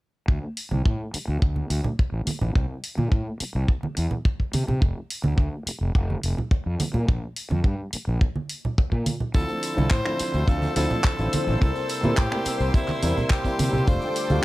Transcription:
0.28 D2, kick
0.57 open hi-hat
0.71 C2, high conga
0.85 A2, kick
1.14 muted fingered electric bass stroke, open hi-hat
1.28 D2
1.42 D2, kick
1.56 high conga
1.70 D2, open hi-hat
1.84 low conga
1.99 kick
2.12 A1
2.27 muted fingered electric bass stroke, open hi-hat, high conga
2.41 A1, low conga
2.55 C2, kick
2.84 open hi-hat
2.98 A#2, high conga
3.12 A2, kick
3.40 muted fingered electric bass stroke, open hi-hat
3.55 C2
3.68 kick
3.83 muted fingered electric bass stroke, high conga
3.97 E2, open hi-hat
4.11 low conga
4.25 kick
4.40 kick
4.53 C3, open hi-hat, high conga
4.68 C3, low conga
4.82 F1, kick
5.10 open hi-hat
5.24 D2, high conga
5.38 D2, kick
5.66 muted fingered electric bass stroke, open hi-hat
5.81 F1
5.95 F1, kick
6.10 high conga
6.23 F1, open hi-hat
6.38 low conga
6.51 kick
6.66 F2
6.80 muted fingered electric bass stroke, open hi-hat, high conga
6.94 A#2, low conga
7.08 A#1, kick
7.36 open hi-hat
7.51 F2, high conga
7.64 G2, kick
7.93 muted fingered electric bass stroke, open hi-hat
8.07 A#1
8.21 kick
8.36 high conga
8.49 open hi-hat
8.65 low conga
8.78 kick
8.92 A#2, kick
9.06 open hi-hat, high conga
9.20 low conga
9.34 D2 D3 F3 C4 E4 A4 C5 E6, kick, tambourine
9.48 tambourine
9.63 open hi-hat, tambourine
9.76 C2 D3 F3 C4 E4, tambourine, high conga
9.90 A2 C5, kick, clap, tambourine
10.05 D3 F3 C4 E4, finger snap
10.19 muted fingered electric bass stroke, open hi-hat, tambourine
10.34 D2, tambourine
10.48 D2 D3 F3 C4 F4 A4, kick, tambourine
10.62 tambourine, high conga
10.76 D2 D3 F3 C4 E4 A4, open hi-hat, tambourine
10.90 tambourine, low conga
11.04 kick, clap, tambourine
11.19 A1 D3 F3 C4 E4, tambourine
11.33 muted fingered electric bass stroke, open hi-hat, tambourine, high conga
11.47 A1, tambourine, low conga
11.60 C2 C3 G3 A#3 E4 A4 C6, kick, tambourine
11.75 tambourine
11.89 open hi-hat, tambourine
12.03 A#2 C3 G3 A#3 E4, tambourine, high conga
12.17 A2 G4, kick, clap, tambourine
12.31 C3 G3 A#3 E4, finger snap
12.45 muted fingered electric bass stroke, open hi-hat, tambourine
12.60 C2, tambourine
12.74 C3 G3 A#3 E4 G4, kick, tambourine
12.88 muted fingered electric bass stroke, clap, tambourine, high conga
13.02 E2 C3 G3 A#3 E4, open hi-hat, tambourine
13.18 tambourine, low conga
13.30 G4, kick, clap, tambourine
13.44 C3 G3 A#3 E4, kick, tambourine
13.59 C3, open hi-hat, tambourine, high conga
13.73 C3, tambourine, low conga
13.87 F1 D3 G3 A3 F4 A4 C5 G5 D6, kick, tambourine
14.02 tambourine
14.16 open hi-hat, tambourine
14.30 D2 D3 G3 A3 F4, tambourine, high conga

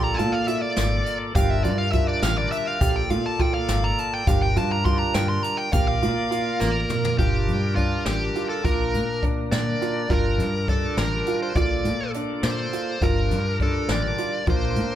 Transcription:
Already playing: A#1 A#3 F4 A4 D5
0.04 A#5
0.14 G#5
0.18 A#2 F4 A5, snare, closed hi-hat, shaker
0.33 F5
0.48 F4 E5, closed hi-hat
0.62 D5
0.77 G#1, snare, closed hi-hat, shaker
1.06 closed hi-hat, shaker
1.35 G1 G3 D4 F4 G4 A#4 F5, kick, closed hi-hat, shaker
1.50 E5
1.64 G2 F4 D5, closed hi-hat
1.78 F5
1.92 F4 E5, kick, closed hi-hat
2.08 D5
2.22 A1 F5, snare, closed hi-hat, shaker
2.38 D5
2.52 E5, closed hi-hat
2.67 F5
2.80 A#1 A#3 F4 G4 A4 D5, kick, closed hi-hat, shaker
2.96 G5
3.10 A#2 F4 F5, closed hi-hat
3.26 A5
3.39 F4 G5, kick, closed hi-hat
3.54 F5
3.69 G#1, snare, closed hi-hat, shaker
3.84 A#5
3.98 A5, closed hi-hat
4.14 G5
4.26 G1 G3 D4 F4 G4 A#4 F5, kick, closed hi-hat, shaker
4.42 G5
4.56 G2 F4 A5, closed hi-hat
4.72 A#5
4.85 F4 C6, kick, closed hi-hat
4.99 A#5
5.14 G2 G5, snare, closed hi-hat, shaker
5.29 C6
5.43 A#5, closed hi-hat
5.58 G5
5.73 A#1 A#3 F4 G4 A#4 D5 F5, kick, closed hi-hat, shaker
5.88 F5
6.02 A#2 F4, closed hi-hat
6.31 F4, closed hi-hat, shaker
6.60 A1 A#4, snare, shaker
6.89 mid tom, shaker
7.04 floor tom
7.18 G1 G3 D4 F4 G4 A#4, kick, closed hi-hat
7.48 G2, closed hi-hat
7.75 D4 F4, kick, closed hi-hat
8.05 A1 G4, snare, closed hi-hat
8.35 F4, closed hi-hat
8.49 A4
8.64 A#1 A#2 A#3 D4 F4 A#4, kick, closed hi-hat
8.94 A#2, closed hi-hat
9.23 D4, kick, closed hi-hat
9.52 A#2 D5, snare, closed hi-hat
9.82 F4, closed hi-hat
10.08 G1 G3 D4 F4 A#4, kick, closed hi-hat
10.38 G2, closed hi-hat
10.68 D4 A4, kick, closed hi-hat
10.97 A1 A#4, snare, closed hi-hat
11.26 F4, closed hi-hat
11.42 C5
11.54 A#1 A#3 F4 A4 D5, kick, closed hi-hat
11.84 A#2, closed hi-hat
12.14 D4, closed hi-hat
12.43 A#2 C5, snare, closed hi-hat
12.73 F4, closed hi-hat
13.00 G1 G3 D4 F4 A#4, kick, closed hi-hat
13.31 G2, closed hi-hat
13.60 D4 A4, kick, closed hi-hat
13.89 A1 D5, snare, closed hi-hat
14.18 F4, closed hi-hat
14.46 A#1 A#2 A#3 D4 F4 A#4 C5, kick, closed hi-hat
14.76 A#2, closed hi-hat

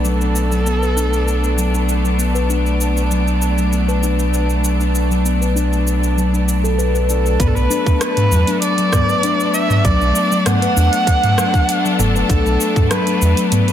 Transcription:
Already playing: B1 A3 B3 D4 D5
0.05 F#3 A4, shaker
0.21 D4, shaker
0.36 shaker
0.52 F#3, shaker
0.66 B3, shaker
0.82 B4, shaker
0.96 D4, shaker
1.13 shaker
1.28 shaker
1.44 shaker
1.58 F#3, shaker
1.74 D4, shaker
1.89 shaker
2.05 F#3, shaker
2.19 B3, shaker
2.35 B4, shaker
2.49 D4, shaker
2.66 shaker
2.81 shaker
2.97 shaker
3.11 F#3, shaker
3.27 D4, shaker
3.42 shaker
3.58 F#3, shaker
3.72 B3, shaker
3.88 B4, shaker
4.03 D4, shaker
4.19 shaker
4.34 shaker
4.50 shaker
4.64 F#3, shaker
4.80 D4, shaker
4.95 shaker
5.11 F#3, shaker
5.25 B3, shaker
5.41 B4, shaker
5.56 D4, shaker
5.73 shaker
5.87 shaker
6.03 shaker
6.17 F#3, shaker
6.33 D4, shaker
6.49 shaker
6.64 A4, shaker
6.78 B4, shaker
6.95 B4, shaker
7.09 D4 A4, shaker
7.26 shaker
7.39 B1 A3 B3 D4 A4 B4, kick, closed hi-hat, mid tom, shaker
7.47 A4
7.55 B1 B4, shaker
7.70 D4, shaker
7.86 kick, shaker
8.01 B4, cross-stick, closed hi-hat, shaker
8.17 closed hi-hat, mid tom, shaker
8.31 E2 F#3, shaker
8.47 D4, closed hi-hat, shaker
8.62 D5, closed hi-hat, shaker
8.78 F#3, closed hi-hat, shaker
8.93 kick, cross-stick, mid tom, shaker
9.09 B4, shaker
9.23 D4, closed hi-hat, shaker
9.40 shaker
9.54 E5, shaker
9.70 mid tom, shaker
9.85 B1 F#3 D5, kick, closed hi-hat, shaker
10.01 B1 D4, shaker
10.16 shaker
10.31 F#3, shaker
10.46 B3 F#5, cross-stick, closed hi-hat, mid tom, shaker
10.62 B4, closed hi-hat, shaker
10.76 E2 D4, shaker
10.93 closed hi-hat, shaker
11.07 kick, closed hi-hat, shaker
11.24 closed hi-hat, mid tom, shaker
11.38 F#3, cross-stick, shaker
11.54 D4, kick, shaker
11.69 closed hi-hat, shaker
11.85 F#3, shaker
11.99 F#1 B3 A4, mid tom, shaker
12.15 B4, shaker
12.29 B1 D4, kick, closed hi-hat, shaker
12.45 B1, shaker
12.61 shaker
12.76 kick, mid tom, shaker
12.91 F#3 B4, cross-stick, closed hi-hat, shaker
13.07 D4, closed hi-hat, shaker
13.22 E2, shaker
13.37 F#3, closed hi-hat, shaker
13.52 B3 B4, closed hi-hat, mid tom, shaker
13.68 B4, closed hi-hat, shaker

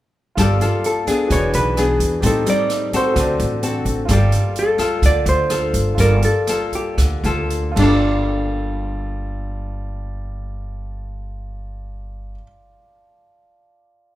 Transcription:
0.35 G1 G3 A#3 F4 A4, kick, cross-stick, closed hi-hat
0.40 G4 D5
0.61 A#3 F4 A4, closed hi-hat
0.84 A4, closed hi-hat
1.07 B3 D4 G#4, kick, cross-stick, closed hi-hat
1.28 E1 E3 F#4 G#4 B4, kick, closed hi-hat
1.32 C#5 D5
1.53 B1 B4, closed hi-hat
1.77 B3 D4 G#4, cross-stick, closed hi-hat
2.00 E2, kick, closed hi-hat
2.21 A1 A2 G3 C4 D#4 G4 A4 C5, kick, closed hi-hat
2.27 D#4 A4
2.46 G3 C4 D#4 D5, closed hi-hat
2.70 cross-stick, closed hi-hat
2.93 C4 F#4 A4 C5, kick, closed hi-hat
3.14 D2 D3 F#4 A4, kick, cross-stick, closed hi-hat
3.18 C5 D5
3.39 A1, closed hi-hat
3.63 C4 F#4 A4, closed hi-hat
3.85 A1, kick, closed hi-hat
4.05 G1 G3 F4 A4, kick, cross-stick, closed hi-hat
4.09 A#3 F4 G4 A4 D5
4.32 closed hi-hat
4.56 A4, closed hi-hat
4.78 A#3 F4 A4, kick, cross-stick, closed hi-hat
5.02 D2 D3 D5, kick, closed hi-hat
5.26 D2 C5, closed hi-hat
5.50 A#3 F4 A4, cross-stick, closed hi-hat
5.73 G1, kick, closed hi-hat
5.95 G1 F4 A4, kick, closed hi-hat
5.99 G3 A#3 F4 A4 A#4 D5
6.22 A4, closed hi-hat
6.47 A#3 F4 A4, cross-stick, closed hi-hat
6.72 G4, kick, closed hi-hat
6.98 D2 D3, kick, cross-stick, closed hi-hat
7.24 D2 A#3 F4 A4, closed hi-hat
7.50 closed hi-hat
7.72 F4 A4
7.76 G1 G3 A#3 D4 F4, kick, crash
7.82 A4 D5

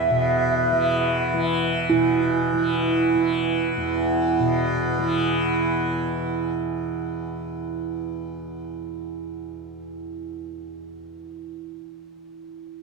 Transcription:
Already playing: E2 E3 E5
0.10 B2
0.72 E3
1.34 E3
1.90 B2 E4
2.53 E3
3.15 E3
3.77 E2
4.39 B2
4.99 E3

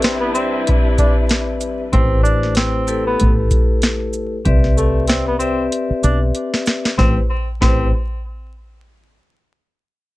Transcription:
Already playing: C3 G3 C4 D4 E4 G4 B4 D5 E5
0.02 C4, snare, closed hi-hat
0.21 B3
0.34 C4 G4 B4 D5 E5, shaker
0.67 kick, closed hi-hat
0.98 D4, kick, closed hi-hat, shaker
1.29 snare, closed hi-hat
1.61 closed hi-hat, shaker
1.92 A1 A3 C4 E4 G4 B4 C5, kick, closed hi-hat
2.23 D4, shaker
2.43 snare
2.55 C4, snare, closed hi-hat
2.87 A3 E4 G4 A4 B4, shaker
3.06 B3
3.20 A1, kick, closed hi-hat
3.51 kick, closed hi-hat, shaker
3.82 snare, closed hi-hat
4.13 shaker
4.45 C2 C4 G4 B4 D5 E5, kick, closed hi-hat
4.64 snare
4.77 A3, shaker
5.07 C4, snare, closed hi-hat
5.27 B3
5.39 C4 G4 B4 D5 E5, shaker
5.72 closed hi-hat
5.90 muted fingered electric bass stroke
6.04 B1 D4, closed hi-hat, shaker
6.35 closed hi-hat
6.54 snare
6.66 snare, shaker
6.85 snare
6.98 A1 A3 C4 E4 G4 B4 C5, kick, snare
7.61 A1 A3 C4 E4 G4 B4 C5, kick, snare

